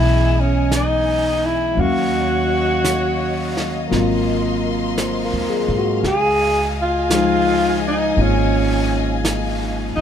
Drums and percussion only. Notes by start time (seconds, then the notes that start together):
0.72 brush sweep, snare, hi-hat pedal
1.79 brush sweep
2.85 brush sweep, snare, hi-hat pedal
3.57 snare
3.92 brush sweep, snare
4.98 brush sweep, snare, hi-hat pedal
6.04 brush sweep, snare
7.10 brush sweep, snare, hi-hat pedal
8.17 brush sweep
9.25 brush sweep, snare, hi-hat pedal